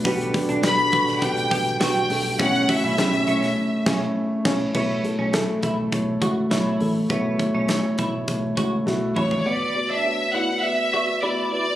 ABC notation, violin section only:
X:1
M:4/4
L:1/16
Q:1/4=102
K:Amix
V:1 name="Violin section"
z4 b4 g4 g4 | f2 e8 z6 | z16 | z12 z2 c2 |
d3 e3 f2 e4 d2 d2 |]